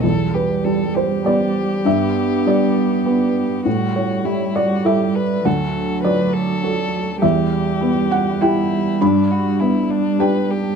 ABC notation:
X:1
M:3/4
L:1/8
Q:1/4=100
K:Em
V:1 name="Felt piano"
z B2 c d2 | e2 d4 | z ^c2 d e2 | f2 d4 |
e3 f g2 | b4 g2 |]
V:2 name="Felt piano"
E,,2 G,2 [B,G]2 | G,,2 G,2 [B,B]2 | A,,2 G,2 [EA]2 | D,,2 F,2 [FA]2 |
E,,2 B,2 [EG]2 | G,,2 B,2 [DG]2 |]
V:3 name="Violin"
A G A G3- | G6 | F2 E F G B | A2 B A3 |
G4 E2 | D F E D B G |]
V:4 name="Cello" clef=bass
G,6 | B,6 | G,6 | F,6 |
G,6- | G,6 |]